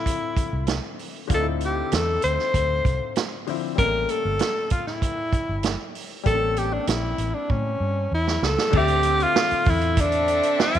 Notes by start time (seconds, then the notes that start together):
Already playing: D3 F3 C4 E4 E5
0.06 kick, closed hi-hat
0.37 muted fingered electric bass stroke, kick, closed hi-hat
0.53 C2
0.67 snare, closed hi-hat
0.99 open hi-hat
1.28 D2 D3 F4, kick, closed hi-hat
1.32 C4 D#4 A4
1.41 E4
1.61 closed hi-hat
1.66 G4
1.92 E2 A4, snare, closed hi-hat
2.22 D2 C5, closed hi-hat
2.39 snare
2.54 D2, kick, closed hi-hat
2.85 C2, kick, closed hi-hat
3.16 snare, closed hi-hat
3.47 D3 F3 C4 E4, open hi-hat
3.75 A1 G3 A#3 A#4, kick, closed hi-hat
3.80 A3 C#4
4.09 A4, closed hi-hat
4.25 G1
4.39 snare, closed hi-hat
4.70 F4, kick, closed hi-hat
4.87 E4, snare
5.02 kick, closed hi-hat
5.33 muted fingered electric bass stroke, kick, closed hi-hat
5.49 G1
5.63 snare, closed hi-hat
5.95 open hi-hat
6.23 A1 G3 A#3 A4, kick, closed hi-hat
6.28 C4 A4
6.35 C#4
6.56 G4, closed hi-hat
6.73 D4
6.87 A#1 E4, snare, closed hi-hat
7.18 A1, closed hi-hat
7.35 D4
7.50 A2 C#4, kick
7.80 G2
8.12 E2 E4
8.27 snare
8.42 C#2 A4, snare
8.58 snare
8.71 D2 D3 A3, kick, crash
8.75 C4 G4 E5
8.88 closed hi-hat
9.03 closed hi-hat
9.20 F4, closed hi-hat
9.36 snare
9.51 muted fingered electric bass stroke, closed hi-hat
9.65 E2, kick, open hi-hat
9.69 E4
9.81 closed hi-hat
9.97 C4 D4 A4 E5, kick, closed hi-hat
10.12 closed hi-hat
10.28 closed hi-hat
10.43 closed hi-hat
10.60 F4, snare
10.74 F2, closed hi-hat